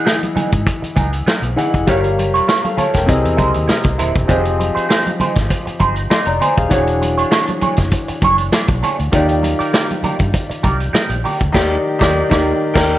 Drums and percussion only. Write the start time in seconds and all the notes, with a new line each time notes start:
0.06 snare, muted conga
0.23 closed hi-hat, high conga
0.37 closed hi-hat, muted conga, high conga, low conga
0.52 kick, closed hi-hat
0.66 kick, closed hi-hat, muted conga
0.84 closed hi-hat
0.96 kick, closed hi-hat, muted conga, high conga
1.13 closed hi-hat
1.27 snare, muted conga, high conga
1.43 closed hi-hat
1.58 closed hi-hat, low conga
1.74 kick, closed hi-hat
1.87 kick, closed hi-hat, muted conga, low conga
2.04 closed hi-hat
2.18 closed hi-hat, muted conga, high conga
2.35 closed hi-hat
2.47 snare, muted conga
2.65 closed hi-hat, high conga
2.78 closed hi-hat, high conga, low conga
2.94 kick, snare, closed hi-hat
3.08 kick, closed hi-hat, muted conga
3.25 closed hi-hat
3.38 kick, closed hi-hat, muted conga, high conga
3.54 closed hi-hat
3.69 snare, muted conga, high conga
3.83 kick, closed hi-hat
3.99 closed hi-hat, muted conga, low conga
4.15 kick, closed hi-hat
4.29 kick, closed hi-hat, low conga
4.45 closed hi-hat
4.60 closed hi-hat, muted conga, high conga
4.77 closed hi-hat
4.89 snare, muted conga
5.07 closed hi-hat, high conga
5.20 closed hi-hat, muted conga, high conga, low conga
5.35 kick, snare, closed hi-hat
5.50 kick, closed hi-hat
5.67 closed hi-hat
5.79 kick, closed hi-hat, muted conga, high conga
5.96 closed hi-hat
6.10 snare, high conga
6.26 closed hi-hat
6.41 closed hi-hat, low conga
6.58 kick, closed hi-hat
6.70 kick, closed hi-hat, muted conga, low conga
6.87 closed hi-hat
7.02 closed hi-hat, muted conga, high conga
7.19 closed hi-hat
7.31 snare, muted conga
7.48 closed hi-hat, high conga
7.61 closed hi-hat, muted conga, high conga, low conga
7.77 kick, snare, closed hi-hat
7.91 kick, closed hi-hat, muted conga
8.08 closed hi-hat
8.22 kick, closed hi-hat, muted conga, high conga
8.38 closed hi-hat
8.52 snare, muted conga, high conga
8.68 kick, closed hi-hat
8.83 closed hi-hat, muted conga, low conga
8.99 closed hi-hat
9.12 kick, closed hi-hat, muted conga, low conga
9.29 closed hi-hat
9.43 closed hi-hat, muted conga, high conga
9.60 closed hi-hat
9.72 snare, muted conga
9.91 closed hi-hat, high conga
10.04 closed hi-hat, muted conga, high conga, low conga
10.19 kick, closed hi-hat
10.34 kick, closed hi-hat, muted conga
10.51 closed hi-hat
10.64 kick, closed hi-hat, muted conga, high conga
10.80 closed hi-hat
10.95 snare, muted conga, high conga
11.10 closed hi-hat
11.25 open hi-hat, muted conga, low conga
11.41 kick, closed hi-hat
11.54 kick, snare, crash
12.01 kick, snare
12.31 kick, snare
12.75 kick, snare, crash